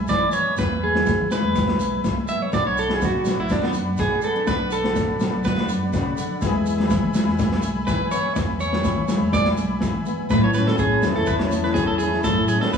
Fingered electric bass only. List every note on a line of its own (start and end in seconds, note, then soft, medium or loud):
0.10 0.30 E3 loud
0.58 1.08 E2 medium
1.20 1.29 E3 loud
1.30 1.41 E3 medium
1.43 1.73 E2 medium
1.78 1.99 B1 medium
2.04 2.24 C2 medium
2.52 3.02 B1 medium
3.13 3.23 B2 medium
3.26 3.36 B2 medium
3.37 3.67 B1 medium
3.73 3.93 F#2 medium
3.99 4.19 B2 loud
4.47 4.97 B1 medium
5.08 5.18 B2 medium
5.20 5.30 B2 medium
5.33 5.62 B1 medium
5.68 5.88 F#2 medium
5.94 6.13 B2 loud
6.42 6.92 E2 loud
7.03 7.12 E3 loud
7.14 7.25 E3 medium
7.27 7.56 E2 medium
7.62 7.82 B1 medium
7.88 8.08 E3 loud
8.36 8.86 E2 loud
8.97 9.07 E3 loud
9.08 9.19 E3 medium
9.20 9.50 E2 medium
9.57 9.77 B1 medium
9.82 10.02 E3 loud
10.30 10.41 A2 loud
10.54 10.65 A2 loud
10.79 10.99 A2 medium
11.02 11.13 E2 loud
11.15 11.25 E2 medium
11.27 11.77 E2 loud
11.87 12.18 E2 loud
12.25 12.36 F#2 loud
12.37 12.58 A2 medium